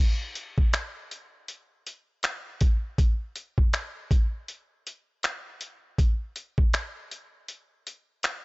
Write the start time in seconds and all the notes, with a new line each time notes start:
0.35 closed hi-hat
0.58 kick
0.73 finger snap, closed hi-hat
1.11 closed hi-hat
1.48 closed hi-hat
1.87 closed hi-hat
2.23 finger snap, closed hi-hat
2.61 kick, closed hi-hat
2.98 kick, closed hi-hat
3.36 closed hi-hat
3.58 kick
3.73 finger snap, closed hi-hat
4.11 kick, closed hi-hat
4.48 closed hi-hat
4.87 closed hi-hat
5.23 finger snap, closed hi-hat
5.61 closed hi-hat
5.98 kick, closed hi-hat
6.36 closed hi-hat
6.58 kick
6.74 finger snap, closed hi-hat
7.11 closed hi-hat
7.48 closed hi-hat
7.87 closed hi-hat
8.23 finger snap, closed hi-hat